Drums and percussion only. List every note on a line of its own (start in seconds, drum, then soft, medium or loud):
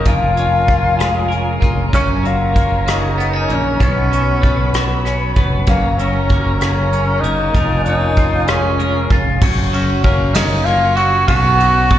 0.05 kick medium
0.05 closed hi-hat medium
0.37 closed hi-hat soft
0.68 kick medium
0.68 closed hi-hat soft
1.00 cross-stick medium
1.00 closed hi-hat medium
1.31 closed hi-hat soft
1.62 kick medium
1.62 closed hi-hat soft
1.93 kick medium
1.93 closed hi-hat medium
2.25 closed hi-hat soft
2.56 kick medium
2.56 closed hi-hat soft
2.87 cross-stick loud
2.87 closed hi-hat medium
3.20 closed hi-hat soft
3.49 closed hi-hat soft
3.80 kick medium
3.80 closed hi-hat medium
4.13 closed hi-hat soft
4.43 kick medium
4.43 closed hi-hat soft
4.74 cross-stick medium
4.74 closed hi-hat medium
5.05 cross-stick soft
5.05 closed hi-hat soft
5.36 kick medium
5.36 closed hi-hat soft
5.67 kick medium
5.67 closed hi-hat medium
5.99 closed hi-hat soft
6.29 kick medium
6.29 closed hi-hat soft
6.61 cross-stick medium
6.61 closed hi-hat medium
6.92 closed hi-hat soft
7.24 closed hi-hat soft
7.54 kick medium
7.54 closed hi-hat medium
7.85 closed hi-hat soft
8.16 kick medium
8.16 closed hi-hat soft
8.48 cross-stick loud
8.48 closed hi-hat medium
8.79 closed hi-hat soft
9.10 kick medium
9.10 closed hi-hat soft
9.41 kick loud
9.41 crash medium
9.74 ride soft
10.03 kick medium
10.03 ride soft
10.34 snare loud
10.34 ride medium
10.66 ride soft
10.97 ride soft
11.28 kick medium
11.28 ride medium
11.60 ride soft
11.90 kick medium
11.90 ride soft